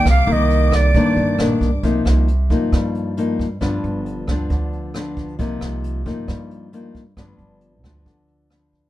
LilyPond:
<<
  \new Staff \with { instrumentName = "Flute" } { \time 4/4 \key c \minor \tempo 4 = 135 f''8 ees''4 d''4. r4 | r1 | r1 | r1 |
r1 | }
  \new Staff \with { instrumentName = "String section" } { \time 4/4 \key c \minor <bes d'''>1 | r1 | r1 | r1 |
r1 | }
  \new Staff \with { instrumentName = "Nylon-string guitar" } { \time 4/4 \key c \minor << { r8 <ees bes>4. <ees bes d'>4 <ees bes d'>8 r8 | <f bes ees'>4 r8 <f bes ees'>4. <f bes ees'>8 r8 | <f b d'>4. <f b d'>4. <f b d'>4 | <f bes ees'>4. <f bes ees'>4. <f bes ees'>8 r8 |
<f b d'>4. <f b d'>4. <f b d'>4 | } \\ { c2 g,2 | c2 g,2 | g,2 d2 | c2 g,2 |
g,2 d2 | } >> }
  \new Staff \with { instrumentName = "Upright bass" } { \clef bass \time 4/4 \key c \minor c,8 c,4. g,8 g,,8 bes,,8 c,8 | c,8 c,4 g,8 g,2 | g,,8 g,,4 d,8 d,2 | c,8 c,4 g,8 g,2 |
g,,8 g,,4 d,8 d,2 | }
  \new DrumStaff \with { instrumentName = "Drums" } \drummode { \time 4/4 <hh bd ss>8 hh8 hh8 <hh bd ss>8 <hh bd>8 hh8 <hh ss>8 <hh bd>8 | <hh bd>8 <hh ss>8 hh8 <hh bd>8 <hh bd ss>8 hh8 hh8 <hh bd>8 | <hh bd ss>8 hh8 hh8 <hh bd ss>8 <hh bd>8 hh8 <hh ss>8 <hh bd>8 | <hh bd>8 <hh ss>8 hh8 <hh bd>8 <hh bd ss>8 hh8 hh8 <hh bd>8 |
<hh bd ss>8 hh8 hh8 <hh bd ss>8 <hh bd>8 hh8 <hh ss>8 bd8 | }
>>